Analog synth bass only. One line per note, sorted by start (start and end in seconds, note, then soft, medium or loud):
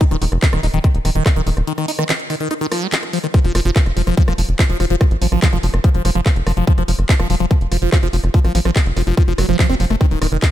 0.11 0.17 D#1 medium
0.22 0.28 D#1 loud
0.32 0.38 F1 medium
0.53 0.59 D#1 medium
0.63 0.69 D#1 loud
0.74 0.80 D#1 medium
0.94 1.00 D#1 medium
1.05 1.11 D#1 loud
1.15 1.21 D#1 medium
1.36 1.42 D#1 medium
1.47 1.52 D#1 loud
1.57 1.63 D#1 medium
3.44 3.50 F1 medium
3.55 3.61 F1 medium
3.65 3.71 F#1 medium
3.86 3.92 F1 medium
3.97 4.03 F1 loud
4.07 4.13 F1 medium
4.28 4.34 F1 medium
4.38 4.44 F1 loud
4.49 4.55 F1 medium
4.69 4.75 F1 medium
4.80 4.86 F1 loud
4.90 4.96 F1 medium
5.11 5.17 A1 medium
5.22 5.28 A1 loud
5.32 5.38 A1 medium
5.53 5.59 F1 medium
5.63 5.69 F1 loud
5.74 5.80 F1 medium
5.94 6.00 F1 medium
6.05 6.11 F1 loud
6.15 6.21 F1 medium
6.36 6.42 F1 medium
6.47 6.53 F1 loud
6.57 6.63 F1 medium
6.78 6.84 F1 medium
6.88 6.94 F1 loud
6.99 7.05 F#1 medium
7.19 7.25 F1 medium
7.30 7.36 F1 loud
7.40 7.46 F1 medium
7.61 7.67 F1 medium
7.72 7.78 F1 loud
7.82 7.88 F1 medium
8.03 8.09 F1 medium
8.13 8.19 F1 loud
8.24 8.30 F1 medium
8.44 8.50 A1 medium
8.55 8.61 A1 medium
8.65 8.71 A1 medium
8.86 8.92 F1 medium
8.97 9.03 F1 loud
9.07 9.13 F1 medium
9.28 9.34 F1 medium
9.38 9.44 F1 loud
9.49 9.55 F1 medium
9.69 9.75 F1 medium
9.80 9.86 F1 loud
9.90 9.96 F1 medium
10.11 10.17 D#1 medium
10.22 10.28 D#1 loud
10.32 10.38 F1 medium